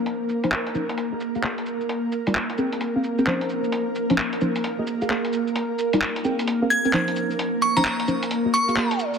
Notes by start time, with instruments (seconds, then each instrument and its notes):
Already playing: synth stab F3 C#4 D#4 C5, ambient pad A#3 A#4
0.06 closed hi-hat, shaker
0.29 shaker
0.44 synth stab F3 C#4 D#4 C5, closed hi-hat, shaker
0.52 clap, shaker
0.67 closed hi-hat
0.75 synth stab F3 C#4 D#4 C5, shaker
0.89 closed hi-hat, shaker
0.98 closed hi-hat, shaker
1.12 synth stab A#3 F#4 G#4 D#5
1.20 shaker
1.35 synth stab A#3 F#4 G#4 F5, shaker
1.43 synth stab A#3 F#4 G#4, clap, shaker
1.58 closed hi-hat
1.66 shaker
1.81 shaker
1.89 closed hi-hat, shaker
2.12 shaker
2.27 synth stab G3 D#4 F4 D5, closed hi-hat, shaker
2.35 clap, shaker
2.50 closed hi-hat
2.58 synth stab C4 G#4 A#4 G5, shaker
2.72 closed hi-hat, shaker
2.81 closed hi-hat, shaker
2.96 synth stab C4 G#4 A#4 F5
3.04 shaker
3.19 synth stab C4 G#4 A#4 G5, shaker
3.27 synth stab F3 C#4 D#4 C5, clap, shaker
3.41 closed hi-hat
3.49 shaker
3.64 shaker
3.72 closed hi-hat, shaker
3.95 shaker
4.10 synth stab F3 C#4 D#4 C5, closed hi-hat, shaker
4.18 clap, shaker
4.33 closed hi-hat
4.41 synth stab F3 C#4 D#4 C5, shaker
4.56 closed hi-hat, shaker
4.64 closed hi-hat, shaker
4.79 synth stab A#3 F#4 G#4 D#5
4.87 shaker
5.02 synth stab A#3 F#4 G#4 F5, shaker
5.10 synth stab A#3 F#4 G#4 F5, clap, shaker
5.25 closed hi-hat
5.33 shaker
5.47 shaker
5.56 closed hi-hat, shaker
5.79 shaker
5.93 synth stab G3 D#4 F4 D5, closed hi-hat, shaker
6.02 clap, shaker
6.16 closed hi-hat
6.24 synth stab C4 G#4 A#4 G5, shaker
6.39 closed hi-hat, shaker
6.47 closed hi-hat, shaker
6.62 synth stab C4 G#4 A#4 F5
6.70 synth bell G#6, shaker
6.85 synth stab C4 G#4 A#4 G5, shaker
6.93 synth stab F3 C#4 D#4 C5, clap, shaker
7.08 closed hi-hat
7.16 shaker
7.31 shaker
7.39 closed hi-hat, shaker
7.62 synth bell C#6, shaker
7.77 synth stab F3 C#4 D#4 C5, synth bell A#5, closed hi-hat, shaker
7.85 clap, shaker
8.00 closed hi-hat
8.08 synth stab F3 C#4 D#4 C5, shaker
8.23 closed hi-hat, shaker
8.31 closed hi-hat, shaker
8.45 synth stab A#3 F#4 G#4 D#5
8.54 synth bell C#6, shaker
8.68 synth stab A#3 F#4 G#4 F5, shaker
8.77 synth stab A#3 F#4 G#4 F5, clap, shaker
8.91 closed hi-hat
8.99 shaker
9.14 shaker